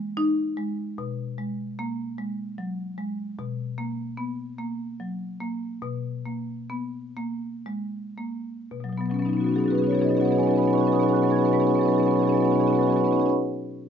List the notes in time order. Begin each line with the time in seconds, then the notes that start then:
Already playing: E3 G#3
0.17 D#4
0.57 G#3
0.98 B2
1.38 G#3
1.79 A#3
2.18 G#3
2.58 F#3
2.98 G#3
3.39 B2
3.78 A#3
4.17 B3
4.59 A#3
5.00 F#3
5.41 A#3
5.82 B2
6.26 A#3
6.70 B3
7.17 A#3
7.66 G#3
8.18 A#3
8.71 B2
8.80 B2 F#3
8.89 B2 F#3
8.98 B2 F#3 B3
9.05 B2 B3
9.10 F#3 B3 C#4
9.16 B2 F#3 C#4
9.22 B2 B3 D#4
9.26 F#3 B3 C#4
9.33 B2 B3 C#4 D#4
9.38 F#3 C#4 F#4
9.43 B2 F#3 B3 D#4 F#4
9.49 B3 C#4 D#4
9.54 B2 F#3 C#4 F#4 G#4
9.58 B3 D#4 F#4
9.63 B2 F#3 C#4 D#4 G#4
9.68 B3 C#4 F#4 G#4 B4
9.73 B2 F#3 B3 D#4 F#4
9.78 C#4 G#4 B4
9.82 B2 F#3 B3 D#4 F#4 B4
9.86 C#4 F#4 G#4 C#5
9.91 B2 F#3 B3 C#4 D#4 G#4 B4 C#5
9.97 B3 D#4 F#4 B4
10.01 B2 F#3 C#4 F#4 G#4 C#5 D#5
10.07 B2 F#3 B3 C#4 D#4 G#4 B4 C#5
10.11 B3 F#4 B4 D#5
10.17 B2 C#4 D#4 F#4 G#4 C#5 D#5
10.21 F#3 B3 G#4 B4 C#5 D#5 F#5
10.25 B2 C#4 D#4 F#4 B4 F#5
10.31 F#3 B3 C#4 G#4 C#5 D#5
10.35 B2 B3 D#4 F#4 B4 D#5 F#5 G#5
10.39 F#3 C#4 D#4 G#4 B4 C#5 F#5
10.44 B2 B3 C#4 F#4 G#4 D#5 G#5
10.48 F#3 D#4 F#4 B4 C#5 D#5 F#5 G#5
10.54 B2 B3 C#4 G#4 C#5 F#5 G#5 B5
10.58 F#3 B3 D#4 F#4 B4 D#5
10.62 B2 C#4 F#4 G#4 B4 C#5 D#5 F#5 G#5 B5
10.67 F#3 B3 C#4 D#4 G#4 C#5 F#5 G#5 B5
10.73 B2 B3 D#4 F#4 B4 D#5 B5 C#6
10.77 F#3 C#4 F#4 G#4 B4 C#5 D#5 F#5 G#5 C#6
10.83 B2 B3 C#4 D#4 G#4 C#5 F#5 G#5 B5 C#6
10.87 F#3 F#4 B4 D#5 G#5 B5
10.91 B2 B3 C#4 D#4 G#4 B4 C#5 D#5 F#5 B5 C#6 D#6
10.96 F#3 B3 F#4 G#5 C#6
11.00 C#4 D#4 F#4 G#4 B4 C#5 D#5 F#5 G#5 B5
11.04 B2 F#3 B3 C#6
11.08 C#4 D#4 F#4 G#4 B4 C#5 D#5 F#5 G#5 B5 C#6
11.13 B2 F#3 B3 G#4 B4 C#5 D#5 F#5 G#5 B5 F#6
11.17 C#4 D#4 F#4 C#6
11.21 B2 F#3 B3 C#4 G#4 B4 C#5 D#5 F#5 G#5 B5 C#6
11.27 B3 D#4 F#4 G#4 B4 C#5 D#5 F#5 G#5 B5 C#6
11.31 B2 F#3 C#4 F#4 B5 G#6
11.36 B3 C#4 D#4 G#4 B4 C#5 D#5 F#5 G#5 C#6
11.40 B2 F#3 F#4 D#5 F#5 G#5 B5 C#6
11.44 B3 C#4 D#4 G#4 B4 C#5 G#5 B5
11.48 B2 F#3 D#4 F#4 D#5 F#5 C#6
11.53 B3 C#4 F#4 G#4 B4 C#5 D#5 G#5 B5 C#6 B6
11.59 B2 F#3 B3 C#4 D#4 G#4 B4 C#5 F#5 G#5 B5 C#6
11.63 B2 F#4 G#4 B4 D#5 F#5 G#5 B5
11.68 F#3 B3 C#4 D#4 F#4 C#5 D#5 G#5 C#6
11.73 B2 B3 G#4 B4 C#5 D#5 F#5 B5 C#6
11.77 F#3 C#4 D#4 F#4 G#5 B5 C#6
11.81 B3 G#4 B4 C#5 D#5 F#5 G#5
11.85 B2 F#3 C#4 D#4 F#4 G#4 B4 B5 C#6
11.90 B3 C#4 F#4 C#5 D#5 F#5 G#5 B5 C#6
11.94 B2 F#3 D#4 G#4 B4 C#5 D#5 F#5 G#5
11.99 B3 C#4 D#4 F#4 G#4 B4 B5 C#6
12.05 B2 F#3 B3 C#4 F#4 C#5 D#5 F#5 G#5 B5 C#6
12.11 B2 C#4 D#4 G#4 B4 C#5 D#5 F#5 G#5 B5 C#6
12.16 F#3 B3 F#4 G#4 B4 G#5 B5 C#6
12.20 B2 C#4 D#4 F#4 C#5 D#5 F#5 C#6
12.24 F#3 B3 G#4 B4 D#5 F#5 G#5 B5
12.29 B3 C#4 D#4 F#4 C#5 G#5 B5 C#6
12.33 B2 F#3 G#4 B4 D#5 F#5 C#6
12.37 B3 C#4 D#4 F#4 B4 C#5 D#5 G#5 B5
12.42 B2 F#3 C#4 D#4 F#4 G#4 C#5 F#5 G#5 B5 C#6
12.48 B2 B3 F#4 G#4 B4 D#5 F#5 G#5 B5 C#6
12.52 F#3 B3 C#4 D#4 B4 C#5 D#5 C#6
12.57 B2 F#3 C#4 D#4 F#4 G#4 C#5 D#5 F#5 G#5 B5
12.61 B3 B4 F#5 G#5 B5 C#6
12.66 B2 F#3 C#4 D#4 F#4 G#4 B4 C#5 D#5 G#5 B5 C#6
12.73 B3 C#4 F#4 G#4 C#5 D#5 F#5 B5 C#6
12.77 B2 F#3 B3 D#4 B4 D#5 F#5 G#5 C#6
12.81 C#4 D#4 F#4 G#4 B4 C#5 G#5 B5
12.86 B2 F#3 B3 F#4 D#5 F#5 G#5 C#6
12.90 C#4 D#4 G#4 B4 C#5 D#5 F#5 B5 C#6
12.94 F#3 B3 C#4 F#4 G#4 C#5 G#5 B5
12.99 D#4 B4 D#5 F#5 G#5 C#6
13.04 B3 C#4 F#4 G#4 B4 C#5 D#5 G#5 B5 C#6
13.08 D#4 F#4 F#5 B5 C#6
13.12 B3 C#4 G#4 B4 C#5 D#5 F#5 G#5 B5
13.16 C#4 D#4 F#4 D#5 G#5 C#6
13.21 D#4 G#4 B4 C#5 F#5 B5 C#6
13.26 C#4 F#4 G#4 B4 C#5 D#5 G#5 B5
13.30 D#5 F#5 C#6